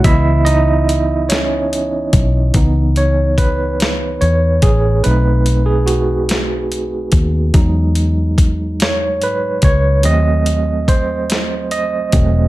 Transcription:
<<
  \new Staff \with { instrumentName = "Tine electric piano" } { \time 6/8 \key cis \minor \tempo 4. = 48 <e' e''>8 <dis' dis''>4 <cis' cis''>4 r8 | r8 cis''8 b'4 cis''8 gis'8 | b'8. gis'16 fis'4 r4 | r4. cis''8 b'8 cis''8 |
ees''4 c''4 ees''4 | }
  \new Staff \with { instrumentName = "Tine electric piano" } { \time 6/8 \key cis \minor <e b dis''>8 r2 r8 | <e b dis'>4. r4. | <a c' dis'>2. | <fis gis dis'>8 r2 r8 |
<fis a c'>2~ <fis a c'>8 <fis a c'>8 | }
  \new Staff \with { instrumentName = "Fingered electric bass" } { \clef bass \time 6/8 \key cis \minor cis,2~ cis,8 b,,8 | cis,2 e,8 a,,8 | b,,2~ b,,8 dis,8 | e,2 gis,8 cis,8 |
ees,2~ ees,8 e,,8 | }
  \new DrumStaff \with { instrumentName = "Drums" } \drummode { \time 6/8 <hh bd>8 hh8 hh8 <hh sn>8 hh8 <hh bd>8 | <hh bd>8 hh8 <hh bd>8 <hh sn>8 hh8 <hh bd>8 | hh8 hh8 hh8 <hh sn>8 hh8 <hh bd>8 | <hh bd>8 hh8 <hh bd>8 <hh sn>8 hh8 <hh bd>8 |
hh8 hh8 <hh bd>8 <hh sn>8 hh8 <hh bd>8 | }
>>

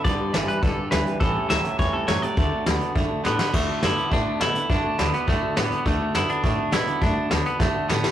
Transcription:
<<
  \new Staff \with { instrumentName = "Steel-string acoustic guitar" } { \time 4/4 \key d \major \tempo 4 = 207 <g d' g' b'>8 <d' g' b'>8 <g d' g' b'>8 <d' g' b'>8 <g d' g' b'>8 <d' g' b'>8 <g d' g' b'>8 <d' g' b'>8 | <a, e g cis' g' a'>8 <g cis' g' a'>8 <a, e g cis' g'>8 <g cis' g' a'>8 <g cis' g' a'>8 <g cis' g' a'>8 <a, e g cis' g' a'>8 <g cis' g' a'>8 | <d a d' fis' a'>8 <d' fis' a'>8 <d a d' fis' a'>8 <d' fis' a'>8 <a d' fis' a'>8 <d' fis' a'>8 <d a d' fis' a'>8 <d' fis' a'>8 | <d a d' fis' a'>8 <d' fis' a'>8 <d a d' fis' a'>8 <d' fis' a'>8 <a d' fis' a'>8 <d' fis' a'>8 <d a d' fis' a'>8 <d' fis' a'>8 |
<d a d' fis' a'>8 <d' fis' a'>8 <d a d' fis' a'>8 <d' fis' a'>8 <a d' fis' a'>8 <d' fis' a'>8 <d a d' fis' a'>8 <d' fis' a'>8 | <d a d' fis' a'>8 <d' fis' a'>8 <d a d' fis' a'>8 <d' fis' a'>8 <a d' fis' a'>8 <d' fis' a'>8 <d a d' fis' a'>8 <d' fis' a'>8 | <d a d' fis' a'>8 <d' fis' a'>8 <d a d' fis' a'>8 <d' fis' a'>8 <a d' fis' a'>8 <d' fis' a'>8 <d a d' fis' a'>8 <d' fis' a'>8 | }
  \new Staff \with { instrumentName = "Clean electric guitar" } { \time 4/4 \key d \major d''4. b'8 a'4 b'4 | a'4 e''4 cis''8 a'8 cis''8 d''8~ | d''2. b8 b8 | a4 e'4 d'4 e'4 |
d'4. b8 a4 b4 | a4 e'8 d'4. e'4 | d'4. b8 a4 b4 | }
  \new Staff \with { instrumentName = "Clean electric guitar" } { \clef bass \time 4/4 \key d \major <g, d>4 <g, e>4 <g, d>4 <g, e>4 | e4 <a, fis>4 <a, e>4 <a, fis>4 | <d a>4 <d b>4 <d a>4 <d b>4 | <d a>4 <d b>4 <d a>4 <d b>4 |
<d a>4 <d b>4 <d a>4 <d b>4 | <d a>4 <d b>4 <d a>4 <d b>4 | <d a>4 <d b>4 <d a>4 <d b>4 | }
  \new Staff \with { instrumentName = "Upright bass" } { \clef bass \time 4/4 \key d \major g,,8 r8 g,,8 r8 b,,8 r8 d,8 r8 | a,,8 r8 cis,8 r8 e,8 r8 fis,8 r8 | d,8 r8 d,8 r8 fis,8 r8 a,8 r8 | d,8 r8 fis,8 r8 a,8 r8 b,8 r8 |
fis,8 r8 d,8 r8 fis,8 r8 a,8 r8 | d,8 r8 fis,8 r8 a,8 r8 b,8 r8 | fis,8 r8 d,8 r8 fis,8 r8 a,8 r8 | }
  \new DrumStaff \with { instrumentName = "Drums" } \drummode { \time 4/4 <hh bd>4 <hh sn>8 hh8 <hh bd>4 <hh sn>8 hh8 | <hh bd>4 <hh sn>8 hh8 <hh bd>4 <hh sn>8 hh8 | <hh bd>4 <hh sn>8 hh8 <hh bd>4 sn8 sn8 | <cymc bd>4 <hh sn>8 hh8 <hh bd>4 <hh sn>8 hh8 |
<hh bd>4 <hh sn>8 hh8 <hh bd>4 <hh sn>8 hh8 | <hh bd>4 <hh sn>8 hh8 <hh bd>4 <hh sn>8 hh8 | <hh bd>4 <hh sn>8 hh8 <bd sn>4 sn8 sn8 | }
>>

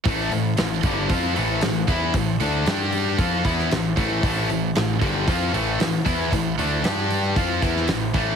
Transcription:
<<
  \new Staff \with { instrumentName = "Tonewheel organ" } { \time 4/4 \key a \minor \tempo 4 = 115 <e' c'' a''>1~ | <e' c'' a''>4 <d' g' g''>4 <e' c'' a''>2~ | <e' c'' a''>1~ | <e' c'' a''>4 <d' g' g''>4 <e' c'' a''>2 | }
  \new Staff \with { instrumentName = "Distorted electric guitar" } { \clef bass \time 4/4 \key a \minor <a, e a>8 <a, e>8 <a, e>8 <g, d g>8 <f c' f'>8 <a, e a>8 <a, e>8 <e b e'>8 | <a, e>8 <d a d'>8 <g d' g'>4 <f c' f'>8 <e b e'>8 <a, e>8 <a, e a>8 | <a, e a>8 <a, e>8 <a, e>8 <g, d g>8 <f c' f'>8 <a, e a>8 <a, e>8 <e b e'>8 | <a, e>8 <d a d'>8 <g d' g'>4 <f c' f'>8 <e b e'>8 <a, e>8 <a, e a>8 | }
  \new Staff \with { instrumentName = "Distorted electric guitar" } { \clef bass \time 4/4 \key a \minor <a, e a>8 <a, e>8 <a, e>8 <g, d g>8 <f c' f'>8 <a, e a>8 <a, e>8 <e b e'>8 | <a, e>8 <d a d'>8 <g d' g'>4 <f c' f'>8 <e b e'>8 <a, e>8 <a, e a>8 | <a, e a>8 <a, e>8 <a, e>8 <g, d g>8 <f c' f'>8 <a, e a>8 <a, e>8 <e b e'>8 | <a, e>8 <d a d'>8 <g d' g'>4 <f c' f'>8 <e b e'>8 <a, e>8 <a, e a>8 | }
  \new Staff \with { instrumentName = "Picked electric bass" } { \clef bass \time 4/4 \key a \minor a,,8 a,,8 a,,8 g,,8 f,8 a,,8 a,,8 e,8 | a,,8 d,8 g,4 f,8 e,8 a,,8 a,,8 | a,,8 a,,8 a,,8 g,,8 f,8 a,,8 a,,8 e,8 | a,,8 d,8 g,4 f,8 e,8 a,,8 a,,8 | }
  \new DrumStaff \with { instrumentName = "Drums" } \drummode { \time 4/4 <hho bd>8 hho8 <hho sn>8 <hho bd>8 <hho bd>8 hho8 <hho sn>8 <hho bd>8 | <hho bd>8 hho8 <hho sn>8 hho8 <hho bd>8 <hho bd>16 sn16 <hho sn>8 <hho bd>8 | <hho bd>8 hho8 <hho sn>8 <hho bd>8 <hho bd>8 hho8 <hho sn>8 <hho bd>8 | <hho bd>8 hho8 <hho sn>8 hho8 <hho bd>8 <hho bd>16 sn16 <hho sn>8 <hho bd>8 | }
>>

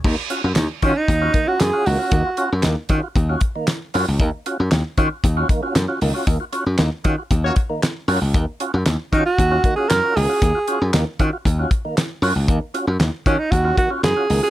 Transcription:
<<
  \new Staff \with { instrumentName = "Alto saxophone" } { \time 4/4 \key ees \minor \tempo 4 = 116 r4. des'16 ees'4 ges'16 aes'8 ges'8~ | ges'4 r2. | r1 | r1 |
r4. ees'16 ges'4 aes'16 bes'8 aes'8~ | aes'4 r2. | r4. des'16 ees'16 ges'8 ges'8 aes'8. aes'16 | }
  \new Staff \with { instrumentName = "Horn section" } { \time 4/4 \key ees \minor r1 | r1 | r1 | r2 r16 <bes ges' des''>16 r4. |
r1 | r1 | r1 | }
  \new Staff \with { instrumentName = "Tonewheel organ" } { \time 4/4 \key ees \minor <ees bes>16 r16 <des' f' ges'>16 <f' ges'>16 r8 <des' f' ges'>16 r8 <des' f' ges'>16 <ees bes>16 <des' f' ges'>16 r16 <des' f' ges'>16 <ees bes>16 <des' f' ges'>16 | <ees bes>16 <f' ges'>16 <des' f' ges'>16 r16 <ees bes>16 r16 <des' f' ges'>16 <f' ges'>16 r16 <des' f' ges'>16 r16 <ees bes>16 r8 <des' f' ges'>16 r16 | <ees bes>16 r16 <des' f' ges'>16 <f' ges'>16 r8 <des' f' ges'>16 r8 <des' f' ges'>16 <ees bes>16 <des' f' ges'>16 r16 <des' f' ges'>16 <ees bes>16 <des' f' ges'>16 | <ees bes>16 <f' ges'>16 <des' f' ges'>16 r16 <ees bes>16 r16 <des' f' ges'>16 <f' ges'>16 r16 <des' f' ges'>16 r16 <ees bes>16 r8 <des' f' ges'>16 r16 |
<ees bes>16 r16 <des' f' ges'>16 <f' ges'>16 r8 <des' f' ges'>16 r8 <des' f' ges'>16 <ees bes>16 <des' f' ges'>16 r16 <des' f' ges'>16 <ees bes>16 <des' f' ges'>16 | <ees bes>16 <f' ges'>16 <des' f' ges'>16 r16 <ees bes>16 r16 <des' f' ges'>16 <f' ges'>16 r16 <des' f' ges'>16 r16 <ees bes>16 r8 <des' f' ges'>16 r16 | <ees bes>16 r16 <des' f' ges'>16 <f' ges'>16 r8 <des' f' ges'>16 r8 <des' f' ges'>16 <ees bes>16 <des' f' ges'>16 r16 <des' f' ges'>16 <ees bes>16 <des' f' ges'>16 | }
  \new Staff \with { instrumentName = "Slap bass" } { \clef bass \time 4/4 \key ees \minor ees,16 r8 ges,16 ees,16 r16 ees16 r16 ees,8 r8 ges,16 r16 des,16 r16 | ees,16 r8 ges,16 ees,16 r16 ees16 r16 ees,8 r4 ges,16 des,16 | ees,16 r8 ges,16 ees,16 r16 ees16 r16 ees,8 r8 ges,16 r16 des,16 r16 | ees,16 r8 ges,16 ees,16 r16 ees16 r16 ees,8 r4 ges,16 des,16 |
ees,16 r8 ges,16 ees,16 r16 ees16 r16 ees,8 r8 ges,16 r16 des,16 r16 | ees,16 r8 ges,16 ees,16 r16 ees16 r16 ees,8 r4 ges,16 des,16 | ees,16 r8 ges,16 ees,16 r16 ees16 r16 ees,8 r8 ges,16 r16 des,16 r16 | }
  \new DrumStaff \with { instrumentName = "Drums" } \drummode { \time 4/4 <cymc bd>8 hh8 <hc hh sn>8 <hh bd>8 <hh bd>8 <hh bd>8 <hc hh sn>8 hho8 | <hh bd>8 hh8 <hc hh sn>8 <hh bd>8 <hh bd>8 <hh bd>8 <hc hh sn>8 hho8 | <hh bd>8 hh8 <hc hh sn>8 <hh bd>8 <hh bd>8 <hh bd>8 <hc hh sn>8 hho8 | <hh bd>8 hh8 <hc hh sn>8 <hh bd>8 <hh bd>8 <hh bd>8 <hc hh sn>8 hho8 |
<hh bd>8 hh8 <hc hh sn>8 <hh bd>8 <hh bd>8 <hh bd>8 <hc hh sn>8 hho8 | <hh bd>8 hh8 <hc hh sn>8 <hh bd>8 <hh bd>8 <hh bd>8 <hc hh sn>8 hho8 | <hh bd>8 hh8 <hc hh sn>8 <hh bd>8 <hh bd>8 <hh bd>8 <hc hh sn>8 hho8 | }
>>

